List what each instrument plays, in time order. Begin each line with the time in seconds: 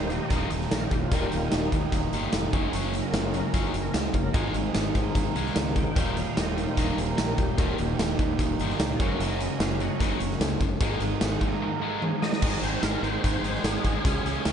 Already playing: fingered electric bass D#1, overdriven electric guitar D#2 A#2 D#3 G3 A#3 D#4, tonewheel organ D#4 C5
0.10 distorted electric guitar D#2 A#2, tonewheel organ G4 D#5, closed hi-hat
0.28 fingered electric bass D#1, distorted electric guitar D#2 A#2 D#3, tonewheel organ D5 D#5, kick, closed hi-hat
0.50 fingered electric bass D#1, distorted electric guitar D#2 A#2, closed hi-hat
0.61 snare
0.71 fingered electric bass A#1, distorted electric guitar D#2 A#2, tonewheel organ A#4, snare, closed hi-hat, tambourine
0.86 tonewheel organ G4
0.91 fingered electric bass D#1, distorted electric guitar D#2 A#2, kick, closed hi-hat
0.99 tonewheel organ F4
1.11 fingered electric bass D#1, distorted electric guitar D#2 A#2 D#3, tonewheel organ D#3 G3 A#3 A#4, overdriven electric guitar G3 A#3 D#4, kick, closed hi-hat
1.23 tonewheel organ G4
1.32 fingered electric bass D#1, distorted electric guitar D#2 A#2, closed hi-hat
1.36 tonewheel organ F4
1.51 fingered electric bass D#1, distorted electric guitar D#2 A#2, tonewheel organ D#4, snare, closed hi-hat, tambourine
1.72 fingered electric bass D#2, distorted electric guitar D#2 A#2, kick, closed hi-hat
1.92 fingered electric bass D#1, distorted electric guitar D#2 A#2, kick, closed hi-hat
2.13 fingered electric bass G1, distorted electric guitar D#2 A#2 D#3, closed hi-hat
2.33 fingered electric bass F1, distorted electric guitar D#2 A#2, snare, closed hi-hat, tambourine
2.53 fingered electric bass F#1, distorted electric guitar F#2 C#3 F#3, overdriven electric guitar A#3 C#4 F#4, kick, closed hi-hat
2.73 fingered electric bass F#1, distorted electric guitar F#2 C#3 F#3, closed hi-hat
2.94 distorted electric guitar F#2 C#3, closed hi-hat
3.02 tonewheel organ A#4
3.12 fingered electric bass F#1, distorted electric guitar F#2 C#3, tonewheel organ C#3 F#3 A#3 F4, snare, closed hi-hat, tambourine
3.26 tonewheel organ D#4
3.34 distorted electric guitar F#2 C#3, closed hi-hat
3.39 tonewheel organ A#4
3.52 fingered electric bass F#1, distorted electric guitar F#2 C#3 F#3, tonewheel organ F4, kick, closed hi-hat
3.66 tonewheel organ D#4
3.74 fingered electric bass F#1, distorted electric guitar F#2 C#3, closed hi-hat
3.81 tonewheel organ A#4
3.94 fingered electric bass C#2, distorted electric guitar F#2 C#3, tonewheel organ F4, snare, closed hi-hat, tambourine
4.08 tonewheel organ D#4
4.13 fingered electric bass F#1, distorted electric guitar F#2 C#3, tonewheel organ C#3 F#3 A#3, kick, closed hi-hat
4.23 tonewheel organ A#4
4.34 fingered electric bass G#1, distorted electric guitar G#2 D#3 G#3, overdriven electric guitar A#3 D#4, tonewheel organ F4, kick, closed hi-hat
4.49 tonewheel organ D#4
4.54 fingered electric bass G#1, distorted electric guitar G#2 D#3, closed hi-hat
4.61 tonewheel organ C4 D#4
4.74 fingered electric bass G#1, distorted electric guitar G#2 D#3, snare, closed hi-hat, tambourine
4.94 fingered electric bass G#2, distorted electric guitar G#2 D#3, tonewheel organ C3 G#3 A#3, kick, closed hi-hat
5.15 fingered electric bass G#1, distorted electric guitar G#2 D#3, kick, closed hi-hat
5.35 fingered electric bass C2, distorted electric guitar G#2 D#3 G#3, closed hi-hat
5.46 snare
5.56 fingered electric bass C#2, distorted electric guitar G#2 D#3, snare, closed hi-hat, tambourine
5.73 distorted electric guitar G#2 D#3, tonewheel organ F#5, kick, closed hi-hat
5.78 tonewheel organ G5
5.95 fingered electric bass D#1, distorted electric guitar D#2 A#2 D#3, overdriven electric guitar G3 A#3 D#4, kick, closed hi-hat
6.16 distorted electric guitar D#2 A#2, tonewheel organ F5, closed hi-hat
6.37 fingered electric bass D#1, distorted electric guitar D#2 A#2, tonewheel organ D#5, snare, closed hi-hat, tambourine
6.57 distorted electric guitar D#2 A#2, tonewheel organ D#3 G3 A#3 C5, closed hi-hat
6.77 fingered electric bass D#1, distorted electric guitar D#2 A#2 D#3, tonewheel organ D#5, kick, closed hi-hat
6.98 fingered electric bass D#1, distorted electric guitar D#2 A#2, tonewheel organ C5, closed hi-hat
7.17 fingered electric bass A#1, distorted electric guitar D#2 A#2, tonewheel organ A#4, snare, closed hi-hat, tambourine
7.38 fingered electric bass D#1, distorted electric guitar D#2 A#2, tonewheel organ G4, kick, closed hi-hat
7.57 fingered electric bass D#1, distorted electric guitar D#2 A#2 D#3, tonewheel organ D#3 G3 A#3 A#4, overdriven electric guitar G3 A#3 D#4, kick, closed hi-hat
7.78 fingered electric bass D#1, distorted electric guitar D#2 A#2, tonewheel organ G4, closed hi-hat
7.99 fingered electric bass D#1, distorted electric guitar D#2 A#2, snare, closed hi-hat, tambourine
8.04 tonewheel organ D#4
8.19 fingered electric bass D#2, distorted electric guitar D#2 A#2, kick, closed hi-hat
8.39 fingered electric bass D#1, distorted electric guitar D#2 A#2, kick, closed hi-hat
8.59 fingered electric bass G1, distorted electric guitar D#2 A#2 D#3, closed hi-hat
8.70 snare
8.79 fingered electric bass C#2, distorted electric guitar D#2 A#2, snare, closed hi-hat, tambourine
8.96 fingered electric bass F#1, tonewheel organ C#3 F#3 A4, overdriven electric guitar A#3 C#4 F#4, kick, closed hi-hat
9.01 distorted electric guitar F#2 C#3 F#3, tonewheel organ A#3 A#4
9.20 fingered electric bass F#1, distorted electric guitar F#2 C#3 F#3, tonewheel organ D#5, closed hi-hat
9.40 distorted electric guitar F#2 C#3, closed hi-hat
9.60 fingered electric bass F#1, distorted electric guitar F#2 C#3, tonewheel organ F5, snare, closed hi-hat, tambourine
9.80 distorted electric guitar F#2 C#3, tonewheel organ D#5 F#5, closed hi-hat
10.00 fingered electric bass F#1, distorted electric guitar F#2 C#3 F#3, kick, closed hi-hat
10.20 fingered electric bass F#1, distorted electric guitar F#2 C#3, closed hi-hat
10.31 snare
10.40 fingered electric bass C#2, distorted electric guitar F#2 C#3, snare, closed hi-hat, tambourine
10.61 fingered electric bass F#1, distorted electric guitar F#2 C#3, kick, closed hi-hat
10.81 fingered electric bass G#1, distorted electric guitar G#2 D#3 G#3, tonewheel organ C3 G#3 A#3, overdriven electric guitar A#3 D#4, kick, closed hi-hat
11.00 fingered electric bass G#1, distorted electric guitar G#2 D#3, closed hi-hat
11.21 fingered electric bass G#1, distorted electric guitar G#2 D#3, snare, closed hi-hat, tambourine
11.26 tonewheel organ F#5
11.41 distorted electric guitar G#2 D#3, fingered electric bass G#2, kick, closed hi-hat
11.46 tonewheel organ D#5
11.62 distorted electric guitar G#2 D#3, tonewheel organ A#4
11.82 distorted electric guitar G#2 D#3 G#3, tonewheel organ A4
12.02 distorted electric guitar G#2 D#3, tonewheel organ G#4, high tom
12.22 distorted electric guitar G#2 D#3, tonewheel organ C5 D#5, snare
12.33 snare
12.42 fingered electric bass G#1, distorted electric guitar G#2 D#3 G#3, tonewheel organ G#3 C4 D#4 C5, kick, crash
12.63 fingered electric bass G#1, distorted electric guitar G#2 D#3 G#3, tonewheel organ C5, closed hi-hat
12.82 fingered electric bass G#1, distorted electric guitar G#2 D#3 G#3, tonewheel organ A#4, snare, closed hi-hat, tambourine
13.02 fingered electric bass G#1, distorted electric guitar G#2 D#3 G#3, tonewheel organ C5, closed hi-hat
13.23 fingered electric bass G#1, distorted electric guitar G#2 D#3 G#3, tonewheel organ C5, kick, closed hi-hat
13.43 fingered electric bass G#1, distorted electric guitar G#2 D#3 G#3, closed hi-hat
13.55 snare
13.64 fingered electric bass G#1, distorted electric guitar G#2 D#3 G#3, tonewheel organ G#4, snare, closed hi-hat, tambourine
13.84 fingered electric bass G#1, distorted electric guitar G#2 D#3 G#3, kick, closed hi-hat
14.05 fingered electric bass C#2, distorted electric guitar C#3 G#3 C#4, tonewheel organ G#3 C#4 F4 G#4 C#5, kick, closed hi-hat
14.24 fingered electric bass C#2, distorted electric guitar C#3 G#3 C#4, snare, closed hi-hat
14.45 fingered electric bass C#2, distorted electric guitar C#3 G#3 C#4, snare, closed hi-hat, tambourine